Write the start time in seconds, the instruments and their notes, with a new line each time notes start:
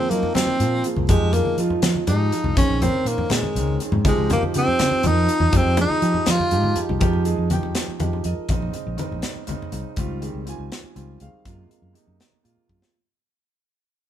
Already playing: tenor saxophone C4
0.10 grand piano F3 A#3 C4 D#4, fretless electric bass F#3, tenor saxophone A#3, closed hi-hat
0.23 muted fretless electric bass stroke, low conga
0.34 fretless electric bass F#3, tenor saxophone C4, snare, closed hi-hat, muted conga, low conga
0.47 muted fretless electric bass stroke, high conga
0.60 fretless electric bass A#2, grand piano F3 A#3 C4 F4, closed hi-hat
0.72 low conga
0.84 grand piano F3 A#3 C4 G#4, closed hi-hat
0.96 fretless electric bass C2, high conga, low conga
1.09 fretless electric bass F2, grand piano F3 G#3 D#4 G4, tenor saxophone G#3, kick, closed hi-hat, muted conga
1.22 fretless electric bass F2
1.33 grand piano F3 G#3 D#4 G#4, tenor saxophone A#3, closed hi-hat, low conga
1.45 muted fretless electric bass stroke, high conga, low conga
1.58 fretless electric bass F3, grand piano F3 G#3 D#4 F4, closed hi-hat
1.70 muted fretless electric bass stroke, low conga
1.82 fretless electric bass F3, snare, closed hi-hat, muted conga
1.95 muted fretless electric bass stroke, high conga
2.07 fretless electric bass G#2, grand piano F3 G#3 D#4 G4, tenor saxophone D#4, closed hi-hat, low conga
2.21 low conga
2.32 grand piano F3 G#3 D#4 F4, closed hi-hat
2.44 fretless electric bass C2, high conga, low conga
2.57 fretless electric bass A#1, grand piano D#3 C4 C#4 G#4, tenor saxophone C#4, kick, closed hi-hat, muted conga
2.69 fretless electric bass A#1
2.82 grand piano D#3 C4 C#4 A#4, tenor saxophone C4, closed hi-hat, low conga
2.94 high conga, low conga
3.05 fretless electric bass A#2, grand piano D#3 C4 C#4 A#4, tenor saxophone A#3, closed hi-hat
3.18 muted fretless electric bass stroke, low conga
3.30 fretless electric bass A#2, tenor saxophone G#3, snare, closed hi-hat, muted conga
3.43 muted fretless electric bass stroke, high conga
3.55 fretless electric bass C#2, grand piano D#3 C4 C#4 A#4, closed hi-hat
3.68 low conga
3.80 grand piano D#3 C4 C#4 G#4, closed hi-hat
3.92 fretless electric bass G#2, high conga, low conga
4.05 fretless electric bass C#2, grand piano F3 C4 D#4 G4, tenor saxophone G#3, kick, closed hi-hat, muted conga
4.17 fretless electric bass C#2
4.29 grand piano F3 C4 D#4 G4, tenor saxophone A#3, closed hi-hat, low conga
4.42 muted fretless electric bass stroke, high conga, low conga
4.54 fretless electric bass C#3, grand piano F3 C4 D#4 G4, tenor saxophone C4, closed hi-hat
4.68 muted fretless electric bass stroke, low conga
4.79 fretless electric bass C#3, snare, closed hi-hat, muted conga
4.91 muted fretless electric bass stroke, high conga
5.02 fretless electric bass F2, grand piano F3 C4 D#4 A#4, closed hi-hat, low conga
5.07 tenor saxophone D#4
5.28 grand piano F3 C4 D#4 F4, closed hi-hat
5.40 fretless electric bass E2, high conga, low conga
5.52 fretless electric bass F2, grand piano F3 G#3 D#4 G4, kick, closed hi-hat, muted conga, low conga
5.56 tenor saxophone C4
5.66 fretless electric bass F2
5.76 grand piano F3 G#3 D#4 G#4, closed hi-hat, low conga
5.81 tenor saxophone D#4
5.90 muted fretless electric bass stroke, high conga
6.02 grand piano F3 G#3 D#4 G4, fretless electric bass F3, closed hi-hat
6.14 muted fretless electric bass stroke, low conga
6.26 fretless electric bass F3, snare, closed hi-hat, muted conga, low conga
6.30 tenor saxophone F4
6.40 muted fretless electric bass stroke, high conga, low conga
6.51 fretless electric bass G#2, grand piano F3 G#3 D#4 G4, closed hi-hat, high conga
6.64 high conga
6.75 grand piano F3 G#3 D#4 G4, closed hi-hat, low conga
6.89 fretless electric bass C2, low conga
7.00 fretless electric bass F2, grand piano F3 G#3 D#4 G4, kick, closed hi-hat, muted conga, high conga, low conga
7.13 low conga
7.24 grand piano F3 G#3 D#4 G#4, closed hi-hat
7.38 fretless electric bass F2
7.50 grand piano F3 G#3 D#4 G4 G5, closed hi-hat, muted conga, high conga
7.63 fretless electric bass F2, low conga
7.75 snare, closed hi-hat
7.88 muted fretless electric bass stroke
7.99 fretless electric bass F2, grand piano F3 G#3 D#4 G4, closed hi-hat, muted conga, high conga
8.13 low conga
8.24 fretless electric bass F2, grand piano F3 G#3 D#4 A#4 D#5, closed hi-hat
8.38 muted fretless electric bass stroke
8.49 fretless electric bass A#1, grand piano C#3 G#3 C4 D#4, kick, closed hi-hat, muted conga, high conga, low conga
8.62 low conga
8.73 grand piano C#3 G#3 C4 D#4, closed hi-hat
8.87 fretless electric bass A#1
8.97 grand piano C#3 G#3 C4 D#4, closed hi-hat, muted conga, high conga
9.11 fretless electric bass A#1, low conga
9.22 snare, closed hi-hat
9.36 muted fretless electric bass stroke
9.47 fretless electric bass C#2, grand piano C#3 G#3 C4 D#4, closed hi-hat, muted conga, high conga
9.60 muted fretless electric bass stroke, low conga
9.72 fretless electric bass C2, grand piano C#3 G#3 C4 D#4, closed hi-hat
9.96 fretless electric bass C#2, grand piano D#3 G3 C4 F4, kick, closed hi-hat
10.21 grand piano D#3 G3 C4 G#4, closed hi-hat
10.34 fretless electric bass C#2
10.45 grand piano D#3 G3 C4 F4, closed hi-hat
10.49 grand piano G#5
10.58 fretless electric bass C#2
10.72 snare, closed hi-hat
10.84 muted fretless electric bass stroke
10.95 fretless electric bass C#2, grand piano D#3 G3 C4 F4, closed hi-hat
11.20 fretless electric bass C#2, grand piano D#3 G3 C4 G#4 F5, closed hi-hat
11.34 muted fretless electric bass stroke
11.45 fretless electric bass F#2, grand piano C3 G#3 A#3 F4, kick, closed hi-hat
11.68 grand piano C3 G#3 A#3 F4, closed hi-hat
11.82 fretless electric bass F#2
11.93 grand piano C3 G#3 A#3 D#4, closed hi-hat
12.07 fretless electric bass F#2
12.20 snare, closed hi-hat
12.33 muted fretless electric bass stroke
12.43 fretless electric bass A#2, grand piano C3 G#3 A#3 F4, closed hi-hat
12.57 muted fretless electric bass stroke
12.67 fretless electric bass F#2, grand piano C3 G#3 A#3 F4, kick
12.82 snare